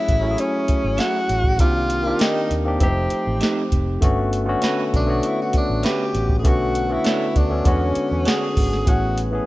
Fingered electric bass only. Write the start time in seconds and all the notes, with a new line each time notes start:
0.09 A1
0.69 muted fingered electric bass stroke
0.84 G#1
1.29 A1
1.60 C2
2.51 D#2
2.81 F1
3.12 muted fingered electric bass stroke
3.27 A1
3.72 F1
4.02 G1
4.94 B1
5.54 muted fingered electric bass stroke
5.70 A1
6.15 A1
6.45 B1
7.36 D2
7.66 E2
7.96 muted fingered electric bass stroke
8.11 E2
8.57 G#1
8.87 A1